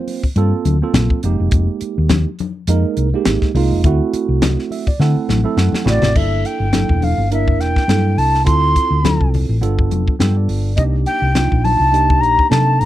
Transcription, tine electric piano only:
Already playing: A#3 C4 F4 C5
0.36 A#3 C4 F4 A4
0.82 A#3 C4 F4 A4
1.24 G#3 A#3 D#4 G4
2.69 G#3 A#3 D#4 A#4
3.13 G#3 A#3 D#4 G4
3.55 G#3 A#3 D#4 F4
3.84 A3 C4 E4 F#4
4.72 E5
4.88 D5
5.00 A3 C4 E4 A4 F#5
5.44 A3 C4 E4 A4 E5
5.57 F#5
5.84 A3 C4 E4 F#4
6.15 A#3 D4 E4 A4
6.73 A#3 D4 E4 A4
7.31 A#3 D4 E4 A#4
7.88 A#3 D4 E4 A4
8.44 C4 E4 F4 A4
9.02 C4 E4 F4 A4
9.61 B3 D4 F4 A4
10.19 B3 D4 F4 A4 G5
10.37 D5
10.76 A#3 D4 D#4 G4
11.35 A#3 D4 D#4 F4
11.92 A#3 D4 D#4 G4
12.49 A#3 D4 D#4 A4

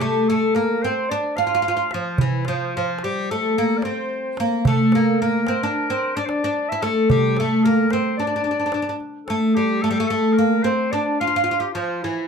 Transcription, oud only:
0.01 A3
0.30 A3
0.56 A#3
0.84 C4
1.11 D4
1.38 F4
1.47 F4
1.55 F4
1.62 F4
1.68 F4
1.77 F4
1.94 F3
2.21 E3
2.48 F3
2.77 F3
3.04 G3
3.31 A3
3.58 A#3
3.85 C4
4.40 A#3
4.67 A3
4.95 A#3
5.22 A#3
5.48 C4
5.63 D4
5.90 C4
6.17 D4
6.44 D4
6.72 E4
6.82 A3
7.11 G3
7.40 A3
7.65 A#3
7.93 C4
8.20 D4
8.27 D4
8.36 D4
8.44 D4
8.51 D4
8.60 D4
8.66 D4
8.74 D4
8.82 D4
8.89 D4
9.30 A3
9.57 G3
9.84 A3
9.91 G3
10.00 A3
10.10 A3
10.39 A#3
10.64 C4
10.93 D4
11.21 F4
11.27 F4
11.36 F4
11.44 F4
11.51 F4
11.60 F4
11.75 F3
12.04 E3

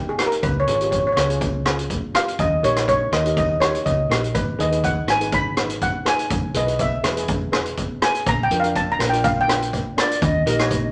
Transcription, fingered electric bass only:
0.43 C#2
0.67 G#1
1.16 C#2
2.39 D#2
2.63 A#1
3.12 D#2
3.86 C#2
4.09 A#1
4.35 G#1
4.59 D#2
5.07 G#1
6.30 E1
6.54 B1
7.04 E1
8.26 A#1
8.51 F2
8.99 A#1
10.22 D#2
10.46 A#1

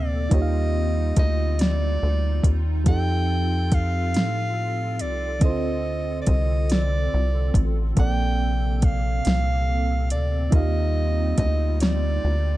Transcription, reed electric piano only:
Already playing: A#2 A#3 D4 A4 C5
0.30 A#3 D#4 F4
0.34 G4 C#5
0.42 F5
2.84 F3 C4 G4
2.89 D#4 A4
5.40 D3 C4 E4
5.44 A4 C5
5.49 F4
7.95 A#2 A#3 C4
7.99 A4 D5
10.51 A#3 D#4 F4
10.55 G4 F5

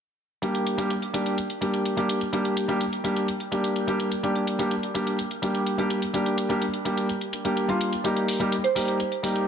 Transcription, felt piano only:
0.42 G3 A#3 D4 G4
0.78 G3 A#3 D4 G4
1.13 G3 A#3 D4 G4
1.61 G3 A#3 D4 G4
1.97 G3 A#3 D4 G4
2.32 G3 A#3 D4 G4
2.68 G3 A#3 D4 G4
3.04 G3 A#3 D4 G4
3.51 G3 A#3 D4 G4
3.87 G3 A#3 D4 G4
4.23 G3 A#3 D4 G4
4.59 G3 A#3 D4 G4
4.94 G3 A#3 D4 G4
5.42 G3 A#3 D4 G4
5.78 G3 A#3 D4 G4
6.13 G3 A#3 D4 G4
6.49 G3 A#3 D4 G4
6.85 G3 A#3 D4 G4
7.45 G3 A#3 D4 G4
7.68 G3 A#3 D4 F4
8.04 G3 A#3 D#4 G4
8.40 G3 A#3 D#4 G4
8.75 G3 A#3 D#4 G4
9.23 G3 A#3 D#4 G4

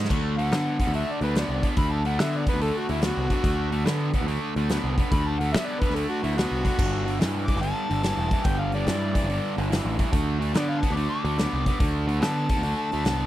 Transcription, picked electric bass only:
0.11 D2
0.52 D3
0.87 D2
1.21 D2
1.49 C2
1.77 D2
2.19 D3
2.54 D2
2.90 D2
3.17 C2
3.44 D2
3.86 D3
4.21 D2
4.56 D2
4.84 C2
5.12 D2
5.54 D3
5.89 D2
6.24 D2
6.52 C2
6.79 G1
7.21 G2
7.56 G1
7.91 G1
8.17 E1
8.45 G1
8.87 G2
9.23 G1
9.58 G1
9.85 A1
10.13 D2
10.56 D3
10.90 D2
11.25 D2
11.53 C2
11.80 D2
12.23 D3
12.57 D2
12.93 D2
13.06 C2

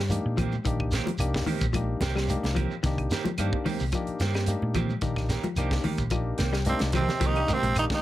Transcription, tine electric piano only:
0.10 A#3 D4 D#4 G4
0.66 A#3 D4 D#4 G4
1.20 A#3 D4 D#4 G4
1.75 A#3 D4 D#4 G4
2.29 A#3 D4 D#4 G4
2.85 A#3 D4 D#4 G4
3.39 A#3 D4 D#4 G4
3.94 A#3 D4 D#4 G4
4.48 A#3 D4 D#4 G4
5.02 A#3 D4 D#4 G4
5.58 A#3 D4 D#4 G4
6.11 A#3 D4 D#4 G4
6.38 G5
6.66 A#3 D4 D#4 G4 D#5
7.36 A#3 D4 D#4 G4
7.77 A#3 D4 D#4 G4

